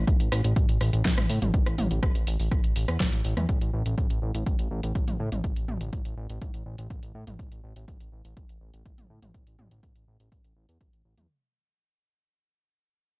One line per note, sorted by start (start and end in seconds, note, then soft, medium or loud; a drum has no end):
0.07 0.17 A1 loud
0.07 kick loud
0.07 closed hi-hat medium
0.20 0.29 A1 medium
0.20 closed hi-hat medium
0.32 0.42 A1 medium
0.32 cross-stick medium
0.32 open hi-hat loud
0.44 0.54 A1 medium
0.44 closed hi-hat medium
0.56 0.66 A1 loud
0.56 kick loud
0.56 closed hi-hat medium
0.69 0.78 A1 medium
0.69 closed hi-hat medium
0.81 0.90 A1 medium
0.81 cross-stick soft
0.81 open hi-hat loud
0.93 1.02 A1 medium
0.93 closed hi-hat medium
1.05 1.15 A1 loud
1.05 kick loud
1.05 snare loud
1.05 closed hi-hat medium
1.18 1.27 A1 medium
1.18 cross-stick medium
1.18 closed hi-hat medium
1.18 mid tom medium
1.30 1.39 A2 medium
1.30 open hi-hat loud
1.42 1.51 A1 medium
1.42 closed hi-hat medium
1.42 mid tom medium
1.54 1.64 A1 medium
1.54 kick loud
1.54 closed hi-hat soft
1.66 1.76 A1 medium
1.66 cross-stick medium
1.66 closed hi-hat medium
1.78 1.88 A1 medium
1.78 mid tom medium
1.78 open hi-hat loud
1.91 2.00 A1 medium
1.91 closed hi-hat medium
2.03 2.12 A1 loud
2.03 kick loud
2.03 cross-stick medium
2.03 closed hi-hat soft
2.15 2.24 A1 medium
2.15 closed hi-hat medium
2.27 2.37 A1 medium
2.27 open hi-hat loud
2.40 2.49 A1 medium
2.40 open hi-hat medium
2.51 2.61 A1 loud
2.51 kick loud
2.51 cross-stick medium
2.51 closed hi-hat medium
2.64 2.73 A1 medium
2.64 closed hi-hat medium
2.76 2.86 A1 medium
2.76 open hi-hat loud
2.88 2.98 E2 medium
2.88 cross-stick medium
2.88 closed hi-hat medium
3.00 3.10 A1 loud
3.00 kick loud
3.00 snare loud
3.00 closed hi-hat soft
3.13 3.22 A1 medium
3.13 closed hi-hat soft
3.25 3.34 A1 medium
3.25 open hi-hat loud
3.37 3.46 E2 medium
3.37 cross-stick medium
3.37 closed hi-hat medium
3.37 mid tom medium
3.49 3.59 A1 medium
3.49 kick loud
3.49 closed hi-hat medium
3.61 3.71 A1 medium
3.61 closed hi-hat medium
3.73 3.83 A1 medium
3.86 3.95 A1 medium
3.86 closed hi-hat medium
3.98 4.07 A1 loud
3.98 kick loud
3.98 closed hi-hat soft
4.10 4.20 A1 medium
4.10 closed hi-hat medium
4.22 4.32 A1 medium
4.35 4.44 A1 medium
4.35 closed hi-hat medium
4.46 4.56 A1 loud
4.46 kick loud
4.46 closed hi-hat medium
4.59 4.68 A1 medium
4.59 closed hi-hat medium
4.71 4.81 A1 medium
4.83 4.93 A1 medium
4.83 closed hi-hat medium
4.95 5.05 A1 loud
4.95 kick loud
4.95 closed hi-hat soft
5.08 5.17 A1 medium
5.08 closed hi-hat soft
5.08 mid tom medium
5.20 5.29 A2 medium
5.32 5.41 A1 medium
5.32 closed hi-hat soft
5.32 mid tom medium
5.44 5.54 A1 medium
5.44 kick loud
5.44 closed hi-hat medium
5.56 5.66 A1 medium
5.56 closed hi-hat medium
5.68 5.78 A1 medium
5.68 mid tom loud
5.81 5.90 A1 medium
5.81 closed hi-hat medium
5.93 6.03 A1 medium
5.93 kick loud
5.93 closed hi-hat medium
6.05 6.15 A1 medium
6.05 closed hi-hat medium
6.17 6.27 A1 medium
6.30 6.39 A1 medium
6.30 closed hi-hat medium
6.42 6.51 A1 loud
6.42 kick loud
6.42 closed hi-hat medium
6.54 6.63 A1 medium
6.54 closed hi-hat medium
6.66 6.76 A1 medium
6.78 6.88 A1 medium
6.78 closed hi-hat medium
6.90 7.00 A1 loud
6.90 kick loud
6.90 closed hi-hat medium
7.03 7.12 A1 medium
7.03 closed hi-hat medium
7.15 7.24 A2 medium
7.27 7.37 A1 medium
7.27 closed hi-hat medium
7.27 mid tom medium
7.39 7.49 A1 loud
7.39 kick loud
7.39 closed hi-hat medium
7.52 7.61 A1 medium
7.52 closed hi-hat medium
7.64 7.73 A1 medium
7.76 7.85 A1 medium
7.76 closed hi-hat medium
7.88 7.98 A1 loud
7.88 kick loud
7.88 closed hi-hat medium
8.00 8.10 A1 medium
8.00 closed hi-hat medium
8.12 8.22 A1 medium
8.25 8.34 A1 medium
8.25 closed hi-hat medium
8.37 8.46 A1 loud
8.37 kick loud
8.37 closed hi-hat medium
8.49 8.59 A1 medium
8.49 closed hi-hat medium
8.61 8.71 A1 medium
8.74 8.83 A1 medium
8.74 closed hi-hat medium
8.86 8.95 A1 loud
8.86 kick loud
8.86 closed hi-hat medium
8.98 9.07 A1 medium
8.98 closed hi-hat medium
8.98 mid tom medium
9.10 9.20 A2 medium
9.22 9.32 A1 medium
9.22 closed hi-hat medium
9.22 mid tom medium
9.34 9.44 A1 loud
9.34 kick loud
9.34 closed hi-hat medium
9.47 9.56 A1 medium
9.47 closed hi-hat medium
9.59 9.68 A1 medium
9.59 mid tom medium
9.71 9.81 A1 medium
9.71 closed hi-hat medium
9.83 9.93 A1 medium
9.83 kick loud
9.83 closed hi-hat medium
9.96 10.05 A1 medium
9.96 closed hi-hat medium
10.08 10.17 A1 medium
10.20 10.29 A1 medium
10.20 closed hi-hat medium
10.32 10.42 A1 loud
10.32 kick loud
10.32 closed hi-hat medium
10.44 10.54 A1 medium
10.44 closed hi-hat medium
10.56 10.66 A1 medium
10.69 10.78 E2 medium
10.69 closed hi-hat medium
10.81 10.90 A1 loud
10.81 kick loud
10.81 closed hi-hat medium
10.93 11.02 A1 medium
10.93 closed hi-hat medium
11.05 11.15 A1 medium
11.18 11.27 E2 medium
11.18 closed hi-hat medium
11.18 mid tom medium